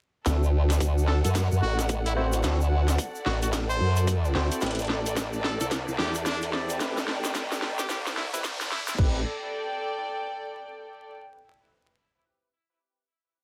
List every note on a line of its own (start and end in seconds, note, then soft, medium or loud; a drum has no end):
0.25 0.79 D2 medium
0.25 0.42 C4 medium
0.25 0.42 E4 medium
0.25 0.42 F#4 medium
0.25 8.97 A4 medium
0.25 0.42 A4 medium
0.25 kick medium
0.25 snare soft
0.25 closed hi-hat medium
0.25 riser medium
0.25 shaker medium
0.43 shaker soft
0.70 4.62 F#5 medium
0.70 snare soft
0.70 closed hi-hat medium
0.70 shaker medium
0.80 1.22 D2 medium
0.80 kick medium
0.80 closed hi-hat medium
0.80 shaker medium
0.88 8.98 D5 medium
0.98 shaker soft
1.08 1.18 A4 medium
1.08 snare soft
1.24 1.49 F#2 loud
1.24 1.31 A4 medium
1.24 closed hi-hat medium
1.24 shaker medium
1.35 kick medium
1.35 snare medium
1.35 closed hi-hat medium
1.35 shaker medium
1.52 1.61 F#2 medium
1.52 shaker soft
1.62 2.42 A1 medium
1.62 1.78 F#4 medium
1.79 snare soft
1.79 closed hi-hat medium
1.79 shaker medium
1.89 kick loud
1.89 closed hi-hat medium
1.89 shaker medium
2.06 2.13 E4 medium
2.06 closed hi-hat soft
2.06 shaker soft
2.16 2.41 C4 medium
2.16 2.27 E4 medium
2.16 2.41 E4 medium
2.16 2.41 F#4 medium
2.16 2.41 C5 loud
2.33 closed hi-hat medium
2.33 shaker medium
2.43 2.97 D2 medium
2.43 2.60 C4 medium
2.43 2.60 E4 medium
2.43 2.60 F#4 medium
2.43 2.60 A4 medium
2.43 kick medium
2.43 snare medium
2.43 closed hi-hat medium
2.43 shaker medium
2.61 shaker soft
2.88 snare medium
2.88 closed hi-hat medium
2.88 shaker medium
2.98 kick medium
2.98 closed hi-hat medium
2.98 shaker medium
3.15 shaker soft
3.26 3.79 A1 loud
3.26 3.36 F#4 medium
3.26 snare medium
3.42 3.49 F#4 medium
3.42 closed hi-hat medium
3.42 shaker medium
3.53 kick medium
3.53 snare medium
3.53 closed hi-hat medium
3.53 shaker medium
3.70 4.08 C5 medium
3.70 shaker soft
3.80 4.33 F#2 medium
3.96 closed hi-hat medium
3.96 shaker medium
4.07 kick loud
4.07 closed hi-hat medium
4.07 shaker medium
4.25 shaker soft
4.35 4.49 D2 medium
4.35 4.60 C4 loud
4.35 4.60 E4 medium
4.35 4.60 F#4 medium
4.35 4.60 C5 loud
4.35 snare medium
4.51 closed hi-hat medium
4.51 shaker medium
4.61 5.15 A1 loud
4.61 4.78 C4 medium
4.61 4.78 E4 medium
4.61 4.78 G4 medium
4.61 4.78 B4 medium
4.61 kick loud
4.61 snare medium
4.61 closed hi-hat medium
4.61 shaker medium
4.66 closed hi-hat medium
4.71 closed hi-hat soft
4.75 closed hi-hat soft
4.75 shaker soft
4.79 closed hi-hat soft
4.82 closed hi-hat soft
4.84 closed hi-hat soft
4.87 snare medium
4.87 closed hi-hat soft
5.06 closed hi-hat medium
5.06 shaker medium
5.17 5.58 A1 medium
5.17 kick medium
5.17 snare medium
5.17 closed hi-hat medium
5.17 shaker medium
5.33 shaker soft
5.44 5.55 A4 medium
5.44 snare medium
5.60 5.85 C2 loud
5.60 5.68 A4 medium
5.60 closed hi-hat medium
5.60 shaker medium
5.71 kick loud
5.71 snare medium
5.71 closed hi-hat medium
5.71 shaker medium
5.88 5.97 C2 loud
5.88 shaker soft
5.98 6.79 E2 loud
5.98 6.14 G4 medium
5.98 8.98 G5 medium
5.98 snare medium
6.01 snare medium
6.04 snare medium
6.07 snare soft
6.13 snare soft
6.13 closed hi-hat medium
6.13 shaker medium
6.25 6.41 D4 medium
6.25 kick loud
6.25 snare medium
6.25 closed hi-hat medium
6.25 shaker medium
6.41 closed hi-hat soft
6.41 shaker soft
6.53 6.78 C4 loud
6.53 6.78 E4 medium
6.53 6.78 G4 loud
6.53 6.78 D5 loud
6.53 snare medium
6.70 closed hi-hat medium
6.70 shaker medium
6.80 7.33 A1 medium
6.80 6.96 C4 medium
6.80 6.96 E4 medium
6.80 6.96 G4 medium
6.80 6.96 B4 medium
6.80 kick loud
6.80 snare medium
6.80 closed hi-hat medium
6.80 shaker medium
6.97 snare medium
6.97 shaker soft
7.08 snare medium
7.24 snare medium
7.24 closed hi-hat medium
7.24 shaker medium
7.35 7.88 A1 loud
7.35 kick loud
7.35 snare medium
7.35 closed hi-hat medium
7.35 shaker medium
7.52 snare medium
7.52 shaker soft
7.62 snare loud
7.79 7.86 G4 medium
7.79 snare medium
7.79 closed hi-hat medium
7.79 shaker medium
7.89 8.31 C2 loud
7.89 8.00 G4 medium
7.89 kick loud
7.89 snare loud
7.89 closed hi-hat medium
7.89 shaker medium
8.07 snare medium
8.07 shaker soft
8.17 8.27 E4 medium
8.17 snare loud
8.33 8.42 A1 loud
8.33 8.44 C4 loud
8.33 8.40 E4 medium
8.33 8.44 E4 medium
8.33 8.44 G4 medium
8.33 8.44 B4 loud
8.33 closed hi-hat medium
8.33 shaker medium
8.44 8.70 C2 loud
8.44 kick loud
8.44 snare loud
8.44 closed hi-hat medium
8.44 shaker medium
8.61 snare medium
8.61 closed hi-hat soft
8.61 shaker soft
8.71 8.82 E4 medium
8.71 snare loud
8.88 8.95 E4 medium
8.88 snare loud
8.88 shaker medium
8.98 9.24 A1 medium
8.98 9.20 C4 medium
8.98 9.20 E4 medium
8.98 9.20 G4 medium
8.98 11.13 A4 medium
8.98 9.20 B4 medium
8.98 kick loud
8.98 crash medium
9.09 11.13 D5 medium
9.18 11.13 G5 medium